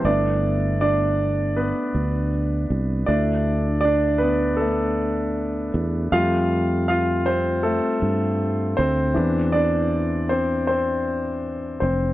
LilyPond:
<<
  \new Staff \with { instrumentName = "Grand piano" } { \time 4/4 \key g \mixolydian \tempo 4 = 79 << { <d' d''>4 <d' d''>4 <b b'>4 r4 | d''4 <d' d''>8 <b b'>8 <a a'>4. r8 | f''4 <f' f''>8 <c' c''>8 <a a'>4. <c' c''>8~ | <c' c''>8 <d' d''>4 <c' c''>8 <c' c''>4. <c' c''>8 | } \\ { <a b e'>8 r2. r8 | <a d' e'>4. r2 r8 | <g a f'>8 r2. r8 | <e d' b'>8 r2. r8 | } >> }
  \new Staff \with { instrumentName = "Fretless electric bass" } { \clef bass \time 4/4 \key g \mixolydian g,,2~ g,,16 r16 d,4 c,8 | d,2.~ d,8 e,8 | f,2~ f,16 r16 g,4 d,8 | e,2.~ e,8 f,,8 | }
>>